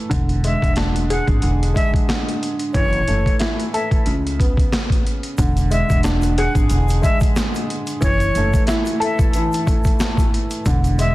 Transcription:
Already playing: upright piano E3 A3 E4 A4
0.09 upright bass E1, upright piano D3, kick, closed hi-hat
0.29 closed hi-hat
0.44 upright piano G#3, flute E5, closed hi-hat
0.62 upright bass E1, kick, closed hi-hat
0.76 upright piano D4, snare, closed hi-hat
0.96 closed hi-hat
1.10 upright piano G#4, flute F#5, closed hi-hat
1.28 upright bass G#1, kick, closed hi-hat
1.42 upright bass E1, upright piano D3, closed hi-hat
1.63 closed hi-hat
1.74 upright piano G#3, flute E5, kick, closed hi-hat
1.94 kick, closed hi-hat
2.09 snare, closed hi-hat
2.29 closed hi-hat
2.43 closed hi-hat
2.59 closed hi-hat
2.73 upright bass F#1, upright piano E3, flute C#5, kick, closed hi-hat
2.93 closed hi-hat
3.08 upright bass F#1, upright piano A3, closed hi-hat
3.26 kick, closed hi-hat
3.40 upright piano E4, snare, closed hi-hat
3.60 closed hi-hat
3.73 upright piano A4, flute E5, closed hi-hat
3.91 kick, closed hi-hat
4.06 upright bass C#2, upright piano C#3, closed hi-hat
4.27 closed hi-hat
4.39 upright piano B3, kick, closed hi-hat
4.57 kick, closed hi-hat
4.73 snare, closed hi-hat
4.90 kick, closed hi-hat
5.07 closed hi-hat
5.23 closed hi-hat
5.38 upright bass E1, upright piano D3, kick, closed hi-hat, shaker
5.57 closed hi-hat, shaker
5.71 upright piano G#3, flute E5, closed hi-hat, shaker
5.90 upright bass E1, kick, closed hi-hat, shaker
6.03 upright piano D4, snare, closed hi-hat, shaker
6.22 closed hi-hat, shaker
6.37 upright piano G#4, flute F#5, closed hi-hat
6.55 upright bass G#1, kick, closed hi-hat, shaker
6.70 upright bass E1, upright piano D3, closed hi-hat, shaker
6.89 closed hi-hat, shaker
7.02 upright piano G#3, flute E5, kick, closed hi-hat, shaker
7.20 kick, closed hi-hat, shaker
7.36 snare, closed hi-hat, shaker
7.55 closed hi-hat, shaker
7.70 closed hi-hat
7.87 closed hi-hat, shaker
8.01 upright bass F#1, upright piano E3, flute C#5, kick, closed hi-hat, shaker
8.20 closed hi-hat, shaker
8.35 upright bass F#1, upright piano A3, closed hi-hat, shaker
8.53 kick, closed hi-hat, shaker
8.67 upright piano E4, snare, closed hi-hat, shaker
8.85 closed hi-hat, shaker
9.00 upright piano A4, flute E5, closed hi-hat
9.19 kick, closed hi-hat, shaker
9.33 upright piano E3, closed hi-hat, shaker
9.53 closed hi-hat, shaker
9.66 upright piano A3, kick, closed hi-hat, shaker
9.84 kick, closed hi-hat, shaker
10.00 snare, closed hi-hat, shaker
10.17 kick, closed hi-hat, shaker
10.34 closed hi-hat
10.51 closed hi-hat, shaker
10.66 upright bass E1, upright piano D3, kick, closed hi-hat, shaker
10.84 closed hi-hat, shaker
10.98 upright piano G#3, flute E5, closed hi-hat, shaker

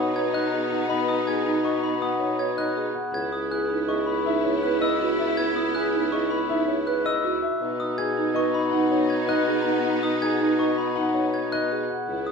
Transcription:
Already playing: bassoon B2, violin section B3 D#4, clarinet D#4, grand piano C#5
0.15 clarinet D#4, marimba C#5, glockenspiel G#6
0.33 clarinet D#4, grand piano D#5, glockenspiel F#6
0.53 clarinet D#4, marimba G#4
0.70 clarinet D#4, grand piano F#5
0.89 clarinet D#4, grand piano D#5, glockenspiel B5
1.08 clarinet D#4, glockenspiel D#6
1.27 clarinet D#4, grand piano G#4, glockenspiel G#6
1.46 clarinet D#4, marimba D#4
1.64 clarinet D#4, marimba B4, grand piano D#5, glockenspiel C#6
1.83 clarinet D#4, glockenspiel B5
2.01 clarinet D#4, marimba D#4, grand piano F#5, glockenspiel D#6
2.20 clarinet D#4, grand piano C#5
2.39 clarinet D#4, marimba C#5, glockenspiel G#6
2.57 clarinet D#4, grand piano D#5, glockenspiel F#6
2.77 clarinet D#4, marimba G#4
2.94 grand piano F#5
3.13 bassoon C#2, violin section B3 E4, clarinet E4, glockenspiel G#6
3.32 clarinet E4, glockenspiel D#6
3.51 clarinet E4, grand piano G#4, glockenspiel F#6
3.70 marimba D#4, clarinet E4
3.88 clarinet E4, marimba G#4, grand piano D#5, glockenspiel C#6
4.07 clarinet E4, glockenspiel B5
4.26 marimba D#4, clarinet E4, grand piano E5
4.44 clarinet E4, grand piano C#5
4.63 clarinet E4, marimba B4, glockenspiel F#6
4.80 clarinet E4, grand piano D#5, glockenspiel E6
5.00 clarinet E4, marimba F#4
5.19 clarinet E4, grand piano E5
5.37 clarinet E4, glockenspiel G#6
5.56 clarinet E4, glockenspiel D#6
5.75 clarinet E4, grand piano G#4, glockenspiel F#6
5.94 marimba D#4, clarinet E4
6.12 clarinet E4, marimba G#4, grand piano D#5, glockenspiel C#6
6.30 clarinet E4, glockenspiel B5
6.49 marimba D#4, clarinet E4, grand piano E5
6.68 clarinet E4, grand piano C#5
6.87 clarinet E4, marimba B4, glockenspiel F#6
7.05 clarinet E4, grand piano D#5, glockenspiel E6
7.24 clarinet E4, marimba F#4
7.42 grand piano E5
7.61 bassoon B2, violin section B3 D#4, clarinet D#4
7.80 clarinet D#4, glockenspiel D#6
7.98 clarinet D#4, grand piano G#4, glockenspiel G#6
8.17 marimba D#4, clarinet D#4
8.35 clarinet D#4, marimba B4, grand piano D#5, glockenspiel C#6
8.54 clarinet D#4, glockenspiel B5
8.71 marimba D#4, clarinet D#4, grand piano F#5
8.91 clarinet D#4, grand piano C#5
9.10 clarinet D#4, glockenspiel G#6
9.28 clarinet D#4, grand piano D#5, glockenspiel F#6
9.48 clarinet D#4, marimba G#4
9.66 clarinet D#4, grand piano F#5
9.85 clarinet D#4
10.03 clarinet D#4, glockenspiel D#6
10.21 clarinet D#4, grand piano G#4, glockenspiel G#6
10.41 marimba D#4, clarinet D#4
10.58 clarinet D#4, marimba B4, grand piano D#5, glockenspiel C#6
10.78 clarinet D#4, glockenspiel B5
10.96 marimba D#4, clarinet D#4, grand piano F#5
11.14 clarinet D#4, grand piano C#5
11.33 clarinet D#4, glockenspiel G#6
11.52 clarinet D#4, grand piano D#5, glockenspiel F#6
11.71 clarinet D#4, marimba G#4
11.90 grand piano F#5
12.08 bassoon C#2, violin section B3 E4, clarinet E4
12.27 clarinet E4, glockenspiel D#6

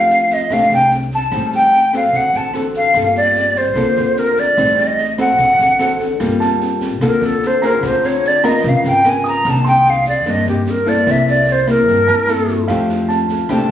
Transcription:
Already playing: upright bass F2, nylon-string guitar F3 A3 D4 G4, flute F5
0.10 snare
0.29 flute D#5, kick, snare, shaker
0.50 upright bass C2, nylon-string guitar C3 A3 D4 G4, flute F5, kick, cross-stick, snare, shaker
0.70 upright bass C2, flute G5, snare, shaker
0.91 snare, shaker
1.11 flute A5, kick, snare, shaker
1.31 upright bass A1, nylon-string guitar A2 G3 C4 D#4, kick, cross-stick, snare, shaker
1.52 flute G5, snare, shaker
1.73 snare
1.93 nylon-string guitar C4 F#4 A4, flute F5, kick, cross-stick, snare, shaker
2.13 upright bass D2, nylon-string guitar D3, flute F#5, kick, snare, shaker
2.33 upright bass A1, flute A5, snare, shaker
2.54 nylon-string guitar C4 F#4 A4, cross-stick, snare, shaker
2.74 flute F5, kick, snare, shaker
2.94 upright bass G1, nylon-string guitar G3 A#3 F4 A4, kick, cross-stick, snare, shaker
3.15 flute D5, snare, shaker
3.35 snare
3.55 flute C5, kick, snare, shaker
3.76 upright bass D2, nylon-string guitar D3 A#3 F4 A4, kick, cross-stick, snare, shaker
3.96 upright bass D2, snare, shaker
4.17 flute A#4, snare
4.37 flute D5, kick, snare, shaker
4.57 upright bass A1, nylon-string guitar A2 G3 C4 D#4, kick, cross-stick, snare, shaker
4.78 snare, shaker
4.87 flute D#5
4.98 snare
5.18 nylon-string guitar C4 F#4 A4, flute F#5, kick, cross-stick, snare, shaker
5.39 upright bass D2, nylon-string guitar D3, kick, snare, shaker
5.59 upright bass A1, snare, shaker
5.79 nylon-string guitar C4 F#4 A4, cross-stick, snare, shaker
6.00 kick, snare, shaker
6.19 upright bass G1, nylon-string guitar G3 A#3 F4 A4, kick, cross-stick, snare, shaker
6.40 grand piano A5, snare, shaker
6.61 snare
6.81 kick, snare, shaker
7.01 upright bass D2, nylon-string guitar D3 A#3 F4 A4, kick, cross-stick, snare, shaker
7.07 flute A#4
7.21 upright bass D2, flute A4, snare, shaker
7.42 snare
7.47 flute C5
7.62 nylon-string guitar C4 F4 G#4, flute A#4, grand piano A#5, kick, snare, shaker
7.82 upright bass D2, nylon-string guitar D3, kick, cross-stick, snare, shaker
7.87 flute C5
8.03 flute C#5, snare, shaker
8.24 flute D5, snare
8.43 nylon-string guitar B3 F4 A#4, flute D#5, grand piano A#5, kick, cross-stick, snare, shaker
8.64 upright bass C#2, nylon-string guitar C#3, kick, snare, shaker
8.69 flute F5
8.84 upright bass G#1, flute G5, snare, shaker
9.05 nylon-string guitar B3 F4 A#4, cross-stick, snare
9.09 flute G#5
9.24 flute A#5, grand piano D#6, kick, snare, shaker
9.45 upright bass C2, nylon-string guitar C3 D#3 A#3 D4, kick, cross-stick, snare, shaker
9.50 flute A5
9.64 flute G5, grand piano C6, snare, shaker
9.86 snare
9.90 flute F5
10.06 flute D5, kick, snare, shaker
10.25 nylon-string guitar G2 D#3 A#3 D4, upright bass G2, kick, cross-stick, snare, shaker
10.30 flute D#5
10.46 upright bass G2, flute G4, snare, shaker
10.67 snare, shaker
10.71 flute A#4
10.86 nylon-string guitar A#3 E4 A4, flute D5, kick, snare, shaker
11.07 upright bass C2, nylon-string guitar C3, kick, cross-stick, snare, shaker
11.11 flute E5
11.27 flute D5, snare, shaker
11.47 snare
11.52 flute C5
11.67 nylon-string guitar A#3 E4, flute A#4, kick, cross-stick, snare, shaker
11.87 upright bass G2, nylon-string guitar G2, kick, snare, shaker
12.07 upright bass G2, grand piano A5, snare, shaker
12.28 nylon-string guitar A#3 E4 A4, cross-stick, snare, shaker
12.48 kick, snare, shaker
12.68 upright bass F2, nylon-string guitar F3 A3 D4 G4, grand piano F5, kick, cross-stick, snare, shaker
12.89 snare, shaker
13.09 grand piano A5, snare
13.29 kick, snare, shaker
13.49 upright bass C2, nylon-string guitar C3 A3 D4 G4, kick, cross-stick, snare, shaker
13.54 flute A5

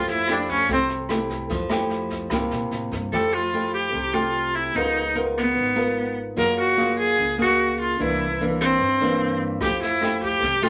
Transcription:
Already playing: upright bass F2, nylon-string guitar F3 A3 E4 G4
0.07 viola E4, snare
0.28 nylon-string guitar A3 E4 G4, cross-stick, snare
0.32 viola D4
0.48 viola C#4, kick, snare
0.68 upright bass C2, nylon-string guitar C3 A3 E4 G4, kick, snare
0.73 viola C4
0.88 snare
1.09 nylon-string guitar A3 E4 G4, cross-stick, snare
1.30 kick, snare
1.49 upright bass F2, nylon-string guitar F3, kick, snare
1.70 nylon-string guitar A3 E4 G4, cross-stick, snare
1.90 snare
2.10 kick, snare
2.30 upright bass C2, nylon-string guitar C3 A#3 E4 G4, kick, cross-stick, snare
2.51 upright bass A#2, snare
2.71 upright bass A2, snare
2.91 upright bass G2, kick, snare
3.12 upright bass F2, nylon-string guitar F3 A3 E4 G4, viola A4
3.34 viola F4
3.53 nylon-string guitar A3 E4 G4
3.74 viola G4
3.92 upright bass C2, nylon-string guitar C3
4.13 nylon-string guitar A3 G4, viola F4
4.55 viola E4
4.74 upright bass C#2, nylon-string guitar C#3 B3 F4 A#4, viola D#4
5.15 nylon-string guitar B3 F4 A#4
5.38 viola B3
5.55 upright bass G#1, nylon-string guitar G#2
5.75 nylon-string guitar B3 F4 A#4
6.36 upright bass F#2, nylon-string guitar F#3 A#3 F4 G#4, viola A#4
6.59 viola F#4
6.77 nylon-string guitar A#3 F4 G#4
6.99 viola G#4
7.18 upright bass C#2, nylon-string guitar C#3
7.38 nylon-string guitar A#3 G#4, viola F#4
7.80 viola F4
7.94 viola F4
7.99 upright bass C2, nylon-string guitar C3 E3 A#3 D4, viola E4
8.40 nylon-string guitar E3 A#3 D4
8.60 viola C4
8.80 upright bass G2, nylon-string guitar G2
9.00 nylon-string guitar E3 A#3 D4
9.60 upright bass F2, nylon-string guitar F3 A3 E4 G4, viola G4, kick, cross-stick, snare
9.81 viola E4, snare
10.01 nylon-string guitar A3 E4 G4, cross-stick, snare
10.21 viola G4, kick, snare
10.42 upright bass C2, nylon-string guitar C3, kick, snare
10.62 nylon-string guitar A3 G4, viola F4, snare

